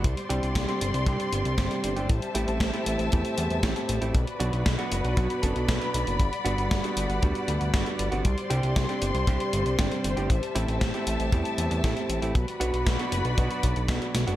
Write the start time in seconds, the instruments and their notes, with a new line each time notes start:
Already playing: string section G3
0.04 analog synth bass C2, string section C5 D5 C6, kick, closed hi-hat
0.17 closed hi-hat
0.29 analog synth bass C2, clean electric guitar C3 G3 C4 D4 G4, closed hi-hat
0.43 analog synth bass C2, closed hi-hat
0.55 analog synth bass C2, kick, snare, closed hi-hat
0.68 clean electric guitar C3 G3 C4 D4 G4, closed hi-hat
0.81 analog synth bass G1, closed hi-hat
0.94 analog synth bass C2, closed hi-hat
1.06 analog synth bass C2, clean electric guitar C3 G3 C4 D4 G4, kick, snare, closed hi-hat
1.20 closed hi-hat
1.33 analog synth bass G1, closed hi-hat
1.45 analog synth bass C2, closed hi-hat
1.58 analog synth bass G1, clean electric guitar C3 G3 C4 D4 G4, kick, snare, closed hi-hat
1.71 closed hi-hat
1.84 analog synth bass G1, closed hi-hat
1.96 analog synth bass G1, clean electric guitar A2 G3 C4 D4 G4, closed hi-hat
2.09 analog synth bass A1, string section E5 A5, kick, closed hi-hat
2.22 closed hi-hat
2.35 analog synth bass A1, clean electric guitar A2 A3 C4 E4 G4, closed hi-hat
2.48 analog synth bass A1, closed hi-hat
2.60 analog synth bass A1, kick, snare, closed hi-hat
2.73 clean electric guitar A2 A3 C4 E4 G4, closed hi-hat
2.86 analog synth bass A1, closed hi-hat
2.99 analog synth bass A1, closed hi-hat
3.12 analog synth bass E2, clean electric guitar A2 A3 C4 E4 G4, kick, closed hi-hat
3.25 closed hi-hat
3.38 analog synth bass E2, closed hi-hat
3.50 analog synth bass E2, closed hi-hat
3.63 analog synth bass A1, clean electric guitar A2 A3 C4 E4 G4, kick, snare, closed hi-hat
3.76 closed hi-hat
3.89 analog synth bass A1, closed hi-hat
4.01 analog synth bass A1, clean electric guitar A3 C4 E4 G4, closed hi-hat
4.15 analog synth bass B1, string section F#4 B4 D5 B5, kick, closed hi-hat
4.27 closed hi-hat
4.40 analog synth bass B1, clean electric guitar B2 F#3 B3 D4 F#4, closed hi-hat
4.53 analog synth bass B1, closed hi-hat
4.66 analog synth bass B1, kick, snare, closed hi-hat
4.78 clean electric guitar B2 F#3 B3 D4 F#4, closed hi-hat
4.92 analog synth bass F#1, closed hi-hat
5.04 analog synth bass B1, closed hi-hat
5.17 analog synth bass B1, clean electric guitar B2 F#3 B3 D4 F#4, kick, snare, closed hi-hat
5.30 closed hi-hat
5.42 analog synth bass F#1, clean electric guitar B2 F#3 B3 D4 A4, kick, closed hi-hat
5.56 analog synth bass B1, closed hi-hat
5.69 analog synth bass B1, kick, snare, closed hi-hat
5.81 clean electric guitar B2 F#3 B3 D4 B4, closed hi-hat
5.94 analog synth bass B1, closed hi-hat
6.07 analog synth bass F#1, closed hi-hat
6.20 analog synth bass G1, string section G3 F#5, kick, closed hi-hat
6.33 closed hi-hat
6.45 analog synth bass G1, clean electric guitar G2 G3 B3 D4 F#4, closed hi-hat
6.58 analog synth bass G1, closed hi-hat
6.71 analog synth bass G1, kick, snare, closed hi-hat
6.83 clean electric guitar G2 G3 B3 D4 F#4, closed hi-hat
6.97 analog synth bass G1, closed hi-hat
7.10 analog synth bass G1, closed hi-hat
7.22 analog synth bass D2, clean electric guitar G2 G3 B3 D4 F#4, kick, closed hi-hat
7.35 closed hi-hat
7.48 analog synth bass D2, closed hi-hat
7.61 analog synth bass D2, closed hi-hat
7.73 analog synth bass G1, clean electric guitar G2 G3 B3 D4 F#4, kick, snare, closed hi-hat
7.86 closed hi-hat
7.99 analog synth bass G1, closed hi-hat
8.12 analog synth bass G1, clean electric guitar C3 G3 B3 D4 F#4, closed hi-hat
8.25 analog synth bass C2, string section C5 C6, kick, closed hi-hat
8.38 closed hi-hat
8.50 analog synth bass C2, clean electric guitar C3 G3 C4 D4 G4, closed hi-hat
8.63 analog synth bass C2, closed hi-hat
8.76 analog synth bass C2, kick, snare, closed hi-hat
8.89 clean electric guitar C3 G3 C4 D4 G4, closed hi-hat
9.02 analog synth bass G1, closed hi-hat
9.15 analog synth bass C2, closed hi-hat
9.27 analog synth bass C2, clean electric guitar C3 G3 C4 D4 G4, kick, snare, closed hi-hat
9.40 closed hi-hat
9.53 analog synth bass G1, closed hi-hat
9.66 analog synth bass C2, closed hi-hat
9.78 analog synth bass G1, clean electric guitar C3 G3 C4 D4 G4, kick, snare, closed hi-hat
9.92 closed hi-hat
10.04 analog synth bass G1, closed hi-hat
10.17 analog synth bass G1, clean electric guitar A2 G3 C4 D4 G4, closed hi-hat
10.30 analog synth bass A1, string section E5 A5, kick, closed hi-hat
10.43 closed hi-hat
10.55 analog synth bass A1, clean electric guitar A2 A3 C4 E4 G4, closed hi-hat
10.68 analog synth bass A1, closed hi-hat
10.81 analog synth bass A1, kick, snare, closed hi-hat
10.94 clean electric guitar A2 A3 C4 E4 G4, closed hi-hat
11.07 analog synth bass A1, closed hi-hat
11.20 analog synth bass A1, closed hi-hat
11.32 analog synth bass E2, clean electric guitar A2 A3 C4 E4 G4, kick, closed hi-hat
11.45 closed hi-hat
11.58 analog synth bass E2, closed hi-hat
11.71 analog synth bass E2, closed hi-hat
11.83 analog synth bass A1, clean electric guitar A2 A3 C4 E4 G4, kick, snare, closed hi-hat
11.97 closed hi-hat
12.09 analog synth bass A1, closed hi-hat
12.22 analog synth bass A1, clean electric guitar A3 C4 E4 G4, closed hi-hat
12.35 analog synth bass B1, string section F#4 B4 D5 B5, kick, closed hi-hat
12.48 closed hi-hat
12.60 analog synth bass B1, clean electric guitar B2 F#3 B3 D4 F#4, closed hi-hat
12.73 analog synth bass B1, closed hi-hat
12.87 analog synth bass B1, kick, snare, closed hi-hat
12.99 clean electric guitar B2 F#3 B3 D4 F#4, closed hi-hat
13.12 analog synth bass F#1, closed hi-hat
13.25 analog synth bass B1, closed hi-hat
13.37 analog synth bass B1, clean electric guitar B2 F#3 B3 D4 F#4, kick, snare, closed hi-hat
13.51 closed hi-hat
13.63 analog synth bass B1, kick, closed hi-hat
13.76 analog synth bass B1, closed hi-hat
13.88 analog synth bass B1, clean electric guitar B2 F#3 B3 D4 F#4, kick, snare, closed hi-hat
14.02 closed hi-hat
14.15 analog synth bass B1, snare, closed hi-hat
14.27 analog synth bass F#1, clean electric guitar G2 F#3 B3 D4 F#4, closed hi-hat